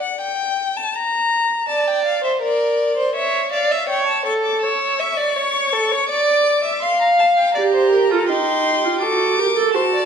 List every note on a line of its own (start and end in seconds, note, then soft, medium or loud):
0.03 0.21 F#5 medium
0.21 0.78 G5 medium
0.77 0.97 A5 medium
0.95 1.69 A#5 medium
1.69 2.20 D5 medium
1.69 1.89 A5 medium
1.88 2.05 G5 medium
2.06 2.24 F5 medium
2.24 2.42 C5 medium
2.24 2.32 E5 soft
2.42 2.96 A#4 medium
2.42 3.15 D5 medium
2.97 3.15 C5 medium
3.15 3.52 C#5 medium
3.15 3.52 E5 medium
3.52 3.73 D5 medium
3.52 3.89 F5 medium
3.71 3.89 E5 medium
3.89 4.25 C#5 medium
3.89 4.07 G5 medium
4.07 4.25 A5 medium
4.26 4.65 A4 medium
4.26 4.33 C#6 medium
4.44 4.61 D6 medium
4.62 5.01 C#5 medium
4.62 5.01 E6 medium
4.99 5.19 E5 medium
4.99 6.09 C#6 medium
5.17 5.37 D5 medium
5.36 5.74 C#5 medium
5.73 5.93 A4 medium
5.91 6.09 C#5 medium
6.09 6.63 D5 medium
6.09 6.81 D6 medium
6.64 6.84 E5 medium
6.82 7.54 F5 medium
6.82 7.00 C6 medium
7.00 7.08 A#5 medium
7.19 7.27 A5 medium
7.38 7.56 G5 medium
7.55 8.13 G4 loud
7.55 7.62 D5 medium
7.55 8.28 A#5 medium
7.74 7.91 C5 medium
7.92 8.10 A#4 medium
8.11 8.31 F4 medium
8.11 8.28 A4 medium
8.29 8.86 D#4 medium
8.29 9.04 G4 medium
8.29 9.01 C6 medium
8.84 9.04 F4 medium
9.02 9.38 F#4 medium
9.02 9.41 A4 medium
9.02 9.74 D6 medium
9.38 9.46 G4 medium
9.38 9.74 A#4 medium
9.57 9.76 A4 medium
9.74 10.05 F#4 medium
9.74 9.82 C5 medium
9.74 10.05 A5 medium
9.94 10.05 D5 medium